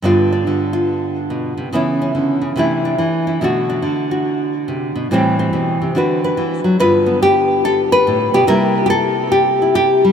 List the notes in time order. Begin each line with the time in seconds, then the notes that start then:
0.02 G2 D3 B3 D4 F4
0.32 D4
0.47 D3
0.73 F4
1.30 B2
1.57 C3
1.73 C#3 E3 B3 C#4 E4
2.02 C#4
2.15 D3
2.42 C#3
2.56 C3 E3 A3 D4 E4
2.85 D4
2.98 E3
3.27 E4
3.41 B2 D3 A3 D4 F#4
3.70 D4
3.82 D3
4.11 F#4
4.68 C3
4.96 B2
5.11 A2 E3 G3 C4 G4
5.39 C4
5.53 B2
5.82 C3
5.95 D3 D4 F#4 B4
6.24 B4
6.37 E3
6.64 F#3
6.80 G2 D3 B3 F4 B4
7.06 B3
7.22 G4
7.65 A4
7.92 B4
8.07 A2
8.34 B2 G4
8.47 C3 G3 A#3 E4 A#4
8.86 G4
8.90 A4
9.32 G4
9.62 E4
9.75 G4
10.05 G3